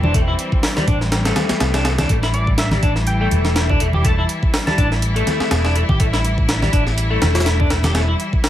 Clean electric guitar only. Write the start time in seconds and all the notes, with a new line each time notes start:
0.04 D4
0.14 A3
0.28 E4
0.76 G3
0.87 D4
1.26 A3
1.75 D4
1.86 A3
1.99 D4
2.10 A3
2.23 E4
2.72 G3
2.83 D4
3.21 A3
3.70 D4
3.81 A3
3.94 G4
4.05 A3
4.19 E4
4.67 G3
4.78 D4
5.16 A3
5.64 D4
5.75 A3
5.89 G4
6.00 A3
6.13 E4
6.62 G3
6.73 D4
7.10 A3
7.60 D4
7.70 A3
7.84 G4
7.95 A3
8.08 E4